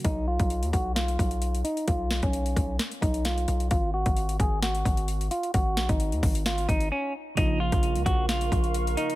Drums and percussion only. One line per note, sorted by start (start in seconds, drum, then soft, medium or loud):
0.05 kick loud
0.05 closed hi-hat medium
0.39 kick medium
0.39 closed hi-hat medium
0.50 closed hi-hat medium
0.63 closed hi-hat medium
0.73 kick loud
0.73 closed hi-hat medium
0.96 snare loud
0.96 closed hi-hat medium
1.08 closed hi-hat medium
1.19 kick loud
1.19 closed hi-hat medium
1.31 closed hi-hat medium
1.42 closed hi-hat medium
1.55 closed hi-hat medium
1.65 closed hi-hat medium
1.77 closed hi-hat soft
1.88 kick loud
1.88 closed hi-hat medium
2.11 snare loud
2.23 kick medium
2.23 closed hi-hat medium
2.33 closed hi-hat medium
2.46 closed hi-hat medium
2.56 kick loud
2.56 closed hi-hat medium
2.79 snare loud
2.79 closed hi-hat medium
2.92 closed hi-hat medium
3.02 kick medium
3.02 closed hi-hat medium
3.14 closed hi-hat medium
3.25 snare loud
3.25 closed hi-hat medium
3.38 closed hi-hat medium
3.48 closed hi-hat medium
3.60 closed hi-hat soft
3.71 kick loud
3.71 closed hi-hat medium
4.06 kick medium
4.06 closed hi-hat medium
4.17 closed hi-hat medium
4.29 closed hi-hat medium
4.40 kick loud
4.40 closed hi-hat medium
4.62 snare loud
4.62 closed hi-hat medium
4.75 closed hi-hat medium
4.85 kick medium
4.85 closed hi-hat medium
4.97 closed hi-hat medium
5.08 closed hi-hat medium
5.21 closed hi-hat medium
5.31 closed hi-hat medium
5.43 closed hi-hat soft
5.54 kick loud
5.54 closed hi-hat medium
5.77 snare loud
5.89 kick medium
5.89 closed hi-hat medium
6.00 closed hi-hat medium
6.12 closed hi-hat medium
6.23 kick loud
6.23 closed hi-hat soft
6.23 open hi-hat medium
6.35 closed hi-hat medium
6.46 snare loud
6.46 closed hi-hat medium
6.58 closed hi-hat medium
6.69 kick medium
6.69 closed hi-hat medium
6.80 closed hi-hat medium
7.37 kick loud
7.37 closed hi-hat medium
7.72 kick medium
7.72 closed hi-hat medium
7.83 closed hi-hat medium
7.95 closed hi-hat medium
8.06 kick loud
8.06 closed hi-hat medium
8.29 snare loud
8.29 closed hi-hat medium
8.41 closed hi-hat medium
8.52 kick medium
8.52 closed hi-hat medium
8.64 closed hi-hat medium
8.74 closed hi-hat medium
8.87 closed hi-hat medium
8.97 closed hi-hat medium
9.10 closed hi-hat soft